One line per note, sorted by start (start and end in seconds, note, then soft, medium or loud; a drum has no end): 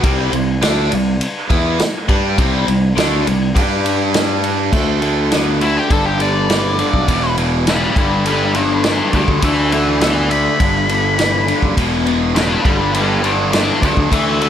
0.03 0.31 C2 medium
0.03 0.32 C3 medium
0.03 0.33 G3 loud
0.03 0.33 C4 loud
0.03 kick loud
0.03 ride medium
0.33 0.60 C2 medium
0.33 0.57 C3 medium
0.33 0.57 G3 medium
0.33 ride medium
0.62 0.90 D2 medium
0.62 0.91 D3 medium
0.62 0.91 A3 loud
0.62 0.91 D4 loud
0.62 snare loud
0.62 ride medium
0.91 1.20 C2 medium
0.91 1.15 C3 medium
0.91 1.15 G3 medium
0.91 ride medium
1.21 ride medium
1.50 1.77 E2 medium
1.50 1.79 E3 medium
1.50 1.79 B3 loud
1.50 1.80 E4 loud
1.50 kick loud
1.50 ride medium
1.79 muted distorted electric guitar stroke medium
1.79 muted overdriven electric guitar stroke medium
1.79 muted fingered electric bass stroke soft
1.79 snare loud
1.79 ride medium
2.08 2.36 G2 medium
2.08 2.37 G3 medium
2.08 2.38 D4 medium
2.08 2.38 G4 medium
2.08 kick loud
2.08 ride medium
2.38 2.66 C2 medium
2.38 2.65 C3 medium
2.38 2.65 G3 medium
2.38 2.67 C4 medium
2.38 kick loud
2.38 ride medium
2.66 2.95 C2 medium
2.66 2.91 C3 medium
2.66 2.91 G3 medium
2.66 ride medium
2.96 3.25 D2 medium
2.96 3.25 D3 medium
2.96 3.25 A3 medium
2.96 3.26 D4 medium
2.96 snare loud
2.96 ride medium
3.26 3.54 C2 medium
3.26 3.50 C3 medium
3.26 3.50 G3 medium
3.26 ride medium
3.55 4.69 G2 medium
3.55 4.72 G3 medium
3.55 4.72 D4 medium
3.55 4.73 G4 loud
3.55 kick medium
3.55 ride medium
3.86 ride medium
4.14 snare loud
4.14 ride medium
4.44 ride medium
4.72 5.77 D2 medium
4.72 4.99 D3 medium
4.72 4.99 A3 medium
4.72 kick loud
4.72 crash loud
5.02 5.29 D3 medium
5.02 5.29 A3 medium
5.02 ride medium
5.31 5.58 D3 medium
5.31 5.58 B3 medium
5.31 snare loud
5.31 ride medium
5.61 5.88 D3 medium
5.61 5.88 A3 medium
5.61 5.77 E4 medium
5.61 ride medium
5.77 5.91 G4 medium
5.90 6.82 G1 medium
5.90 6.17 G2 medium
5.90 6.17 D3 medium
5.90 6.05 A4 medium
5.90 kick medium
5.90 ride medium
6.05 6.20 G4 medium
6.19 6.46 G2 medium
6.19 6.46 D3 medium
6.19 7.35 D5 medium
6.19 ride medium
6.49 6.76 G2 medium
6.49 6.76 E3 medium
6.49 snare loud
6.49 ride medium
6.79 7.05 G2 medium
6.79 7.06 D3 medium
6.79 ride medium
6.94 7.07 B1 medium
6.94 kick medium
7.08 7.86 E1 medium
7.08 7.35 E2 medium
7.08 7.35 B2 medium
7.08 kick medium
7.08 ride medium
7.37 7.64 E2 medium
7.37 7.64 B2 medium
7.37 ride medium
7.67 7.93 E2 medium
7.67 7.94 C#3 medium
7.67 7.97 D4 medium
7.67 7.97 B4 medium
7.67 snare loud
7.67 ride medium
7.96 9.00 G1 medium
7.96 8.23 G2 medium
7.96 8.23 D3 medium
7.96 8.25 D4 medium
7.96 8.26 B4 medium
7.96 kick loud
7.96 ride medium
8.26 8.52 G2 medium
8.26 8.53 D3 medium
8.26 8.54 D4 medium
8.26 8.54 B4 medium
8.26 ride medium
8.55 8.82 G2 medium
8.55 8.82 D3 medium
8.55 8.82 B4 medium
8.55 8.84 D5 medium
8.55 ride medium
8.84 9.12 G2 medium
8.84 9.12 E3 medium
8.84 9.12 B4 medium
8.84 9.14 D5 medium
8.84 snare loud
8.84 ride medium
9.13 9.27 D2 medium
9.13 9.41 G2 medium
9.13 9.41 D3 medium
9.13 9.41 B4 medium
9.13 9.43 D5 medium
9.13 kick medium
9.13 ride medium
9.28 9.41 D2 medium
9.28 kick medium
9.42 10.47 D2 medium
9.42 9.70 D3 medium
9.42 9.70 A3 medium
9.42 9.71 B4 medium
9.42 9.72 E5 medium
9.42 kick medium
9.42 ride medium
9.72 9.99 D3 medium
9.72 10.00 A3 medium
9.72 10.00 B4 medium
9.72 10.01 E5 medium
9.72 ride medium
10.01 10.28 D3 medium
10.01 10.29 B3 medium
10.01 10.29 B4 medium
10.01 10.30 E5 medium
10.01 snare loud
10.01 ride medium
10.31 10.57 D3 medium
10.31 10.57 A3 medium
10.31 12.03 B5 medium
10.31 ride medium
10.60 11.52 G1 medium
10.60 10.87 G2 medium
10.60 10.87 D3 medium
10.60 kick loud
10.60 ride medium
10.88 11.15 G2 medium
10.88 11.16 D3 medium
10.88 ride medium
11.18 11.45 G2 medium
11.18 11.45 E3 medium
11.18 snare loud
11.18 ride medium
11.48 11.74 G2 medium
11.48 11.75 D3 medium
11.48 ride medium
11.63 11.76 F#1 medium
11.63 kick medium
11.77 12.55 E1 medium
11.77 12.04 E2 medium
11.77 12.04 B2 medium
11.77 kick medium
11.77 ride medium
12.06 12.33 E2 medium
12.06 12.33 B2 medium
12.06 ride medium
12.35 12.63 E2 medium
12.35 12.63 C#3 medium
12.35 12.64 D4 medium
12.35 12.64 B4 medium
12.35 snare loud
12.35 ride medium
12.65 13.69 G1 medium
12.65 12.92 G2 medium
12.65 12.92 D3 medium
12.65 12.93 D4 medium
12.65 12.94 B4 medium
12.65 kick loud
12.65 ride medium
12.94 13.21 G2 medium
12.94 13.22 D3 medium
12.94 13.22 D4 medium
12.94 13.23 B4 medium
12.94 ride medium
13.24 13.50 G2 medium
13.24 13.51 D3 medium
13.24 13.52 B4 medium
13.24 13.53 D5 medium
13.24 ride medium
13.53 13.80 G2 medium
13.53 13.80 E3 medium
13.53 13.81 B4 medium
13.53 13.83 D5 medium
13.53 snare loud
13.53 ride medium
13.82 13.96 D2 medium
13.82 14.09 G2 medium
13.82 14.10 D3 medium
13.82 14.11 B4 medium
13.82 14.13 D5 medium
13.82 kick medium
13.82 ride medium
13.97 14.10 D2 medium
13.97 kick medium
14.12 14.49 D2 medium
14.12 14.38 D3 medium
14.12 14.39 A3 medium
14.12 14.40 B4 medium
14.12 14.41 E5 medium
14.12 kick medium
14.12 ride medium
14.41 14.49 D3 medium
14.41 14.49 A3 medium
14.41 14.49 B4 medium
14.41 14.49 E5 medium
14.41 ride medium